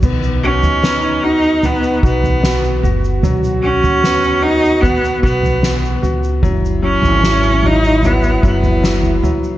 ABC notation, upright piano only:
X:1
M:4/4
L:1/8
Q:1/4=75
K:B
V:1 name="Upright piano"
B, F B, F B, F B, F | F, F B, F B, F B, F | F, F, F, F, F, F, F, F, |]